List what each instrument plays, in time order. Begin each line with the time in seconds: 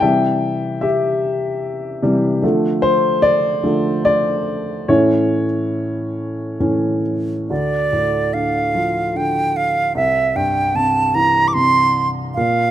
0.00 upright piano C3 E3 G3 E5 G5
0.81 upright piano G4 E5
2.02 upright piano C3 E3 G3
2.42 upright piano D3 F3 A3
2.82 upright piano C5
3.22 upright piano D5
3.64 upright piano D3 F3 A3
4.05 upright piano D5
4.88 upright piano A2 E3 C#4 E4 C#5
6.60 upright piano A2 E3 C#4
7.50 upright piano D2, flute D5
7.93 upright piano A2
8.33 upright piano D3, flute F5
8.75 upright piano F3
9.15 upright piano D3, flute G5
9.56 flute F5
9.95 upright piano C2, flute E5
10.36 upright piano G2, flute G5
10.75 upright piano C3, flute A5
11.14 upright piano E3, flute A#5
11.48 flute D6
11.53 upright piano C3, flute C6
12.34 upright piano A#2, flute F5